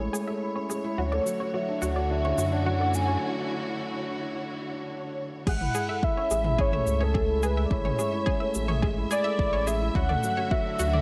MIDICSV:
0, 0, Header, 1, 7, 480
1, 0, Start_track
1, 0, Key_signature, 3, "major"
1, 0, Tempo, 560748
1, 840, Time_signature, 4, 2, 24, 8
1, 9430, End_track
2, 0, Start_track
2, 0, Title_t, "Soft synth lead"
2, 0, Program_c, 0, 80
2, 852, Note_on_c, 0, 73, 86
2, 1293, Note_off_c, 0, 73, 0
2, 1335, Note_on_c, 0, 76, 83
2, 1568, Note_on_c, 0, 78, 88
2, 1581, Note_off_c, 0, 76, 0
2, 1802, Note_on_c, 0, 76, 95
2, 1815, Note_off_c, 0, 78, 0
2, 2166, Note_on_c, 0, 78, 108
2, 2179, Note_off_c, 0, 76, 0
2, 2525, Note_on_c, 0, 80, 105
2, 2538, Note_off_c, 0, 78, 0
2, 2762, Note_off_c, 0, 80, 0
2, 4695, Note_on_c, 0, 78, 121
2, 5169, Note_on_c, 0, 76, 105
2, 5182, Note_off_c, 0, 78, 0
2, 5644, Note_off_c, 0, 76, 0
2, 5655, Note_on_c, 0, 73, 105
2, 6018, Note_on_c, 0, 69, 98
2, 6031, Note_off_c, 0, 73, 0
2, 6377, Note_on_c, 0, 71, 96
2, 6390, Note_off_c, 0, 69, 0
2, 6551, Note_on_c, 0, 74, 65
2, 6564, Note_off_c, 0, 71, 0
2, 6616, Note_on_c, 0, 73, 103
2, 6629, Note_off_c, 0, 74, 0
2, 7568, Note_off_c, 0, 73, 0
2, 7806, Note_on_c, 0, 74, 109
2, 8280, Note_on_c, 0, 76, 102
2, 8293, Note_off_c, 0, 74, 0
2, 8522, Note_on_c, 0, 78, 121
2, 8535, Note_off_c, 0, 76, 0
2, 8997, Note_on_c, 0, 76, 101
2, 9010, Note_off_c, 0, 78, 0
2, 9430, Note_off_c, 0, 76, 0
2, 9430, End_track
3, 0, Start_track
3, 0, Title_t, "Synth arpeggio sound"
3, 0, Program_c, 1, 84
3, 113, Note_on_c, 1, 68, 105
3, 189, Note_off_c, 1, 68, 0
3, 235, Note_on_c, 1, 76, 78
3, 311, Note_off_c, 1, 76, 0
3, 476, Note_on_c, 1, 73, 73
3, 507, Note_off_c, 1, 73, 0
3, 595, Note_on_c, 1, 68, 75
3, 646, Note_off_c, 1, 68, 0
3, 840, Note_on_c, 1, 66, 92
3, 913, Note_off_c, 1, 66, 0
3, 957, Note_on_c, 1, 74, 77
3, 1032, Note_off_c, 1, 74, 0
3, 1199, Note_on_c, 1, 73, 74
3, 1229, Note_off_c, 1, 73, 0
3, 1318, Note_on_c, 1, 66, 78
3, 1368, Note_off_c, 1, 66, 0
3, 1556, Note_on_c, 1, 66, 99
3, 1631, Note_off_c, 1, 66, 0
3, 1677, Note_on_c, 1, 74, 73
3, 1752, Note_off_c, 1, 74, 0
3, 1925, Note_on_c, 1, 73, 76
3, 1952, Note_off_c, 1, 73, 0
3, 2037, Note_on_c, 1, 66, 75
3, 2087, Note_off_c, 1, 66, 0
3, 2280, Note_on_c, 1, 66, 104
3, 2353, Note_off_c, 1, 66, 0
3, 2407, Note_on_c, 1, 74, 72
3, 2477, Note_off_c, 1, 74, 0
3, 2639, Note_on_c, 1, 73, 75
3, 2669, Note_off_c, 1, 73, 0
3, 4683, Note_on_c, 1, 68, 78
3, 4730, Note_off_c, 1, 68, 0
3, 4919, Note_on_c, 1, 68, 89
3, 4993, Note_off_c, 1, 68, 0
3, 5042, Note_on_c, 1, 76, 75
3, 5114, Note_off_c, 1, 76, 0
3, 5285, Note_on_c, 1, 73, 73
3, 5311, Note_off_c, 1, 73, 0
3, 5401, Note_on_c, 1, 68, 71
3, 5449, Note_off_c, 1, 68, 0
3, 5636, Note_on_c, 1, 68, 107
3, 5711, Note_off_c, 1, 68, 0
3, 5762, Note_on_c, 1, 76, 77
3, 5834, Note_off_c, 1, 76, 0
3, 5997, Note_on_c, 1, 73, 76
3, 6028, Note_off_c, 1, 73, 0
3, 6115, Note_on_c, 1, 68, 84
3, 6166, Note_off_c, 1, 68, 0
3, 6361, Note_on_c, 1, 68, 103
3, 6433, Note_off_c, 1, 68, 0
3, 6482, Note_on_c, 1, 76, 76
3, 6554, Note_off_c, 1, 76, 0
3, 6719, Note_on_c, 1, 73, 80
3, 6749, Note_off_c, 1, 73, 0
3, 6836, Note_on_c, 1, 68, 67
3, 6887, Note_off_c, 1, 68, 0
3, 7070, Note_on_c, 1, 68, 100
3, 7148, Note_off_c, 1, 68, 0
3, 7193, Note_on_c, 1, 76, 67
3, 7269, Note_off_c, 1, 76, 0
3, 7433, Note_on_c, 1, 73, 74
3, 7466, Note_off_c, 1, 73, 0
3, 7553, Note_on_c, 1, 68, 86
3, 7605, Note_off_c, 1, 68, 0
3, 7796, Note_on_c, 1, 68, 104
3, 7871, Note_off_c, 1, 68, 0
3, 7911, Note_on_c, 1, 76, 80
3, 7989, Note_off_c, 1, 76, 0
3, 8156, Note_on_c, 1, 73, 72
3, 8187, Note_off_c, 1, 73, 0
3, 8279, Note_on_c, 1, 68, 77
3, 8328, Note_off_c, 1, 68, 0
3, 8523, Note_on_c, 1, 66, 95
3, 8595, Note_off_c, 1, 66, 0
3, 8638, Note_on_c, 1, 74, 79
3, 8712, Note_off_c, 1, 74, 0
3, 8878, Note_on_c, 1, 73, 77
3, 8908, Note_off_c, 1, 73, 0
3, 8997, Note_on_c, 1, 66, 79
3, 9047, Note_off_c, 1, 66, 0
3, 9239, Note_on_c, 1, 66, 102
3, 9313, Note_off_c, 1, 66, 0
3, 9359, Note_on_c, 1, 74, 71
3, 9430, Note_off_c, 1, 74, 0
3, 9430, End_track
4, 0, Start_track
4, 0, Title_t, "String section"
4, 0, Program_c, 2, 48
4, 0, Note_on_c, 2, 73, 71
4, 833, Note_on_c, 2, 66, 82
4, 837, Note_on_c, 2, 64, 69
4, 838, Note_on_c, 2, 50, 74
4, 4642, Note_off_c, 2, 66, 0
4, 4644, Note_off_c, 2, 64, 0
4, 4645, Note_off_c, 2, 50, 0
4, 4648, Note_off_c, 2, 73, 0
4, 4684, Note_on_c, 2, 76, 87
4, 8527, Note_on_c, 2, 64, 72
4, 8528, Note_on_c, 2, 66, 92
4, 8530, Note_on_c, 2, 50, 77
4, 9430, Note_off_c, 2, 50, 0
4, 9430, Note_off_c, 2, 64, 0
4, 9430, Note_off_c, 2, 66, 0
4, 9430, Note_off_c, 2, 76, 0
4, 9430, End_track
5, 0, Start_track
5, 0, Title_t, "Felt piano"
5, 0, Program_c, 3, 0
5, 0, Control_c, 3, 64, 127
5, 0, Note_on_c, 3, 56, 88
5, 0, Note_on_c, 3, 57, 91
5, 0, Note_on_c, 3, 61, 68
5, 0, Note_on_c, 3, 64, 71
5, 0, Note_on_c, 3, 68, 89
5, 0, Note_on_c, 3, 69, 66
5, 114, Note_off_c, 3, 64, 0
5, 126, Note_off_c, 3, 68, 0
5, 126, Note_on_c, 3, 68, 65
5, 237, Note_off_c, 3, 68, 0
5, 242, Note_off_c, 3, 69, 0
5, 242, Note_on_c, 3, 69, 69
5, 355, Note_off_c, 3, 69, 0
5, 361, Note_on_c, 3, 64, 92
5, 474, Note_off_c, 3, 64, 0
5, 480, Note_off_c, 3, 61, 0
5, 480, Note_on_c, 3, 61, 70
5, 594, Note_off_c, 3, 61, 0
5, 608, Note_off_c, 3, 56, 0
5, 608, Note_on_c, 3, 56, 62
5, 672, Note_off_c, 3, 56, 0
5, 722, Note_on_c, 3, 64, 97
5, 835, Note_off_c, 3, 64, 0
5, 845, Note_on_c, 3, 61, 77
5, 849, Control_c, 3, 64, 0
5, 858, Note_off_c, 3, 57, 0
5, 957, Note_off_c, 3, 61, 0
5, 964, Note_on_c, 3, 57, 98
5, 1018, Control_c, 3, 64, 127
5, 1030, Note_off_c, 3, 57, 0
5, 1077, Note_on_c, 3, 54, 67
5, 1193, Note_off_c, 3, 54, 0
5, 1203, Note_on_c, 3, 66, 96
5, 1315, Note_off_c, 3, 66, 0
5, 1318, Note_on_c, 3, 54, 87
5, 1387, Note_off_c, 3, 54, 0
5, 1438, Note_on_c, 3, 62, 71
5, 1553, Note_off_c, 3, 62, 0
5, 1560, Note_on_c, 3, 66, 73
5, 1674, Note_off_c, 3, 66, 0
5, 1677, Note_on_c, 3, 69, 66
5, 1793, Note_off_c, 3, 69, 0
5, 1795, Note_on_c, 3, 62, 98
5, 1911, Note_off_c, 3, 62, 0
5, 1913, Note_on_c, 3, 61, 74
5, 2031, Note_off_c, 3, 61, 0
5, 2041, Note_on_c, 3, 54, 71
5, 2109, Note_off_c, 3, 54, 0
5, 2157, Note_on_c, 3, 62, 99
5, 2272, Note_off_c, 3, 62, 0
5, 2277, Note_on_c, 3, 61, 75
5, 2393, Note_off_c, 3, 61, 0
5, 2396, Note_on_c, 3, 57, 97
5, 2466, Note_off_c, 3, 57, 0
5, 2513, Note_on_c, 3, 54, 64
5, 2629, Note_on_c, 3, 66, 94
5, 2631, Note_off_c, 3, 54, 0
5, 2748, Note_off_c, 3, 66, 0
5, 4681, Note_on_c, 3, 56, 88
5, 4692, Control_c, 3, 64, 0
5, 4749, Note_off_c, 3, 56, 0
5, 4805, Note_on_c, 3, 64, 76
5, 4844, Control_c, 3, 64, 127
5, 4917, Note_off_c, 3, 64, 0
5, 4920, Note_on_c, 3, 68, 68
5, 5034, Note_off_c, 3, 68, 0
5, 5037, Note_on_c, 3, 69, 71
5, 5152, Note_off_c, 3, 69, 0
5, 5159, Note_on_c, 3, 64, 91
5, 5273, Note_off_c, 3, 64, 0
5, 5281, Note_on_c, 3, 61, 71
5, 5394, Note_off_c, 3, 61, 0
5, 5401, Note_on_c, 3, 56, 74
5, 5469, Note_off_c, 3, 56, 0
5, 5521, Note_on_c, 3, 64, 91
5, 5634, Note_off_c, 3, 64, 0
5, 5640, Note_on_c, 3, 61, 80
5, 5754, Note_off_c, 3, 61, 0
5, 5762, Note_on_c, 3, 57, 102
5, 5830, Note_off_c, 3, 57, 0
5, 5881, Note_on_c, 3, 56, 67
5, 5994, Note_off_c, 3, 56, 0
5, 6002, Note_on_c, 3, 68, 94
5, 6115, Note_off_c, 3, 68, 0
5, 6122, Note_on_c, 3, 56, 91
5, 6190, Note_off_c, 3, 56, 0
5, 6244, Note_on_c, 3, 64, 72
5, 6356, Note_off_c, 3, 64, 0
5, 6365, Note_on_c, 3, 68, 70
5, 6476, Note_off_c, 3, 68, 0
5, 6486, Note_on_c, 3, 69, 76
5, 6597, Note_off_c, 3, 69, 0
5, 6603, Note_on_c, 3, 64, 94
5, 6716, Note_off_c, 3, 64, 0
5, 6722, Note_on_c, 3, 61, 73
5, 6835, Note_off_c, 3, 61, 0
5, 6841, Note_on_c, 3, 56, 78
5, 6909, Note_off_c, 3, 56, 0
5, 6964, Note_on_c, 3, 64, 89
5, 7076, Note_off_c, 3, 64, 0
5, 7083, Note_on_c, 3, 61, 74
5, 7196, Note_off_c, 3, 61, 0
5, 7202, Note_on_c, 3, 57, 92
5, 7269, Note_off_c, 3, 57, 0
5, 7322, Note_on_c, 3, 56, 73
5, 7435, Note_off_c, 3, 56, 0
5, 7439, Note_on_c, 3, 68, 92
5, 7553, Note_off_c, 3, 68, 0
5, 7562, Note_on_c, 3, 56, 99
5, 7629, Note_off_c, 3, 56, 0
5, 7685, Note_on_c, 3, 64, 81
5, 7796, Note_off_c, 3, 64, 0
5, 7804, Note_on_c, 3, 68, 72
5, 7916, Note_off_c, 3, 68, 0
5, 7926, Note_on_c, 3, 69, 71
5, 8037, Note_off_c, 3, 69, 0
5, 8044, Note_on_c, 3, 64, 98
5, 8156, Note_off_c, 3, 64, 0
5, 8160, Note_on_c, 3, 61, 75
5, 8274, Note_off_c, 3, 61, 0
5, 8279, Note_on_c, 3, 56, 72
5, 8348, Note_off_c, 3, 56, 0
5, 8404, Note_on_c, 3, 64, 100
5, 8516, Note_off_c, 3, 64, 0
5, 8525, Note_on_c, 3, 61, 77
5, 8532, Control_c, 3, 64, 0
5, 8636, Note_off_c, 3, 61, 0
5, 8646, Note_on_c, 3, 57, 104
5, 8678, Control_c, 3, 64, 127
5, 8711, Note_off_c, 3, 57, 0
5, 8766, Note_on_c, 3, 54, 77
5, 8877, Note_off_c, 3, 54, 0
5, 8882, Note_on_c, 3, 66, 92
5, 8995, Note_off_c, 3, 66, 0
5, 9002, Note_on_c, 3, 54, 92
5, 9069, Note_off_c, 3, 54, 0
5, 9119, Note_on_c, 3, 62, 78
5, 9233, Note_off_c, 3, 62, 0
5, 9241, Note_on_c, 3, 66, 78
5, 9355, Note_off_c, 3, 66, 0
5, 9362, Note_on_c, 3, 69, 77
5, 9430, Note_off_c, 3, 69, 0
5, 9430, End_track
6, 0, Start_track
6, 0, Title_t, "Sub bass"
6, 0, Program_c, 4, 38
6, 839, Note_on_c, 4, 38, 93
6, 1027, Note_off_c, 4, 38, 0
6, 1560, Note_on_c, 4, 38, 78
6, 1998, Note_off_c, 4, 38, 0
6, 2035, Note_on_c, 4, 42, 98
6, 2716, Note_off_c, 4, 42, 0
6, 4683, Note_on_c, 4, 33, 100
6, 4869, Note_off_c, 4, 33, 0
6, 5399, Note_on_c, 4, 33, 75
6, 5838, Note_off_c, 4, 33, 0
6, 5880, Note_on_c, 4, 37, 101
6, 6558, Note_off_c, 4, 37, 0
6, 6598, Note_on_c, 4, 33, 98
6, 6786, Note_off_c, 4, 33, 0
6, 7325, Note_on_c, 4, 33, 75
6, 7760, Note_off_c, 4, 33, 0
6, 8038, Note_on_c, 4, 33, 90
6, 8477, Note_off_c, 4, 33, 0
6, 8518, Note_on_c, 4, 38, 96
6, 8706, Note_off_c, 4, 38, 0
6, 9241, Note_on_c, 4, 38, 84
6, 9430, Note_off_c, 4, 38, 0
6, 9430, End_track
7, 0, Start_track
7, 0, Title_t, "Drums"
7, 125, Note_on_c, 9, 82, 63
7, 211, Note_off_c, 9, 82, 0
7, 603, Note_on_c, 9, 82, 60
7, 688, Note_off_c, 9, 82, 0
7, 961, Note_on_c, 9, 45, 60
7, 1046, Note_off_c, 9, 45, 0
7, 1085, Note_on_c, 9, 82, 64
7, 1171, Note_off_c, 9, 82, 0
7, 1560, Note_on_c, 9, 82, 64
7, 1646, Note_off_c, 9, 82, 0
7, 1924, Note_on_c, 9, 45, 60
7, 2010, Note_off_c, 9, 45, 0
7, 2041, Note_on_c, 9, 82, 62
7, 2127, Note_off_c, 9, 82, 0
7, 2518, Note_on_c, 9, 82, 64
7, 2604, Note_off_c, 9, 82, 0
7, 4681, Note_on_c, 9, 36, 102
7, 4682, Note_on_c, 9, 49, 100
7, 4767, Note_off_c, 9, 36, 0
7, 4768, Note_off_c, 9, 49, 0
7, 4801, Note_on_c, 9, 45, 66
7, 4886, Note_off_c, 9, 45, 0
7, 4921, Note_on_c, 9, 82, 60
7, 5006, Note_off_c, 9, 82, 0
7, 5161, Note_on_c, 9, 36, 104
7, 5246, Note_off_c, 9, 36, 0
7, 5399, Note_on_c, 9, 82, 62
7, 5485, Note_off_c, 9, 82, 0
7, 5517, Note_on_c, 9, 45, 64
7, 5602, Note_off_c, 9, 45, 0
7, 5639, Note_on_c, 9, 36, 99
7, 5725, Note_off_c, 9, 36, 0
7, 5756, Note_on_c, 9, 45, 66
7, 5842, Note_off_c, 9, 45, 0
7, 5881, Note_on_c, 9, 82, 60
7, 5966, Note_off_c, 9, 82, 0
7, 6119, Note_on_c, 9, 36, 106
7, 6205, Note_off_c, 9, 36, 0
7, 6360, Note_on_c, 9, 82, 57
7, 6446, Note_off_c, 9, 82, 0
7, 6598, Note_on_c, 9, 36, 105
7, 6684, Note_off_c, 9, 36, 0
7, 6721, Note_on_c, 9, 45, 60
7, 6806, Note_off_c, 9, 45, 0
7, 6841, Note_on_c, 9, 82, 66
7, 6926, Note_off_c, 9, 82, 0
7, 7078, Note_on_c, 9, 36, 103
7, 7164, Note_off_c, 9, 36, 0
7, 7315, Note_on_c, 9, 82, 62
7, 7401, Note_off_c, 9, 82, 0
7, 7439, Note_on_c, 9, 45, 59
7, 7524, Note_off_c, 9, 45, 0
7, 7558, Note_on_c, 9, 36, 101
7, 7643, Note_off_c, 9, 36, 0
7, 7799, Note_on_c, 9, 82, 61
7, 7884, Note_off_c, 9, 82, 0
7, 8038, Note_on_c, 9, 36, 101
7, 8124, Note_off_c, 9, 36, 0
7, 8281, Note_on_c, 9, 82, 63
7, 8367, Note_off_c, 9, 82, 0
7, 8518, Note_on_c, 9, 36, 101
7, 8603, Note_off_c, 9, 36, 0
7, 8644, Note_on_c, 9, 45, 59
7, 8729, Note_off_c, 9, 45, 0
7, 8760, Note_on_c, 9, 82, 64
7, 8846, Note_off_c, 9, 82, 0
7, 8998, Note_on_c, 9, 36, 108
7, 9084, Note_off_c, 9, 36, 0
7, 9240, Note_on_c, 9, 82, 64
7, 9325, Note_off_c, 9, 82, 0
7, 9360, Note_on_c, 9, 45, 57
7, 9430, Note_off_c, 9, 45, 0
7, 9430, End_track
0, 0, End_of_file